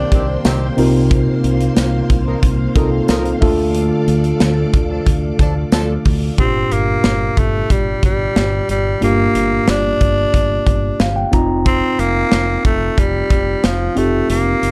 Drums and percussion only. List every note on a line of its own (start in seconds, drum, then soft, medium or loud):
0.12 kick medium
0.12 closed hi-hat medium
0.45 snare loud
0.45 closed hi-hat medium
0.45 tambourine medium
0.78 open hi-hat medium
1.11 kick loud
1.11 closed hi-hat medium
1.44 closed hi-hat medium
1.61 closed hi-hat soft
1.77 snare loud
1.77 closed hi-hat medium
1.77 tambourine medium
2.10 kick medium
2.10 closed hi-hat medium
2.43 kick loud
2.43 closed hi-hat medium
2.76 kick loud
2.76 closed hi-hat medium
3.08 snare loud
3.08 closed hi-hat medium
3.08 tambourine medium
3.25 closed hi-hat medium
3.42 kick medium
3.42 open hi-hat medium
3.75 closed hi-hat medium
4.08 closed hi-hat medium
4.24 closed hi-hat soft
4.40 snare loud
4.40 closed hi-hat medium
4.40 tambourine medium
4.74 kick medium
4.74 closed hi-hat medium
5.07 kick loud
5.07 closed hi-hat medium
5.39 kick medium
5.39 closed hi-hat medium
5.72 snare loud
5.72 closed hi-hat medium
5.72 tambourine medium
6.05 kick medium
6.05 open hi-hat medium
6.38 kick loud
6.38 closed hi-hat medium
6.72 closed hi-hat medium
7.04 snare loud
7.04 closed hi-hat medium
7.37 kick medium
7.37 closed hi-hat medium
7.70 kick medium
7.70 closed hi-hat medium
8.03 kick medium
8.03 closed hi-hat medium
8.36 snare loud
8.36 closed hi-hat medium
8.69 closed hi-hat medium
9.02 closed hi-hat medium
9.35 closed hi-hat medium
9.68 snare loud
9.68 closed hi-hat medium
10.01 kick medium
10.01 closed hi-hat medium
10.34 kick loud
10.34 closed hi-hat medium
10.67 kick medium
10.67 closed hi-hat medium
11.00 snare loud
11.00 closed hi-hat medium
11.33 kick medium
11.33 closed hi-hat medium
11.66 kick loud
11.66 closed hi-hat medium
11.99 closed hi-hat medium
12.32 snare loud
12.32 closed hi-hat medium
12.65 kick medium
12.65 closed hi-hat medium
12.98 kick medium
12.98 closed hi-hat medium
13.30 kick medium
13.30 closed hi-hat medium
13.64 snare loud
13.64 closed hi-hat medium
13.97 closed hi-hat medium
14.30 closed hi-hat medium
14.63 closed hi-hat medium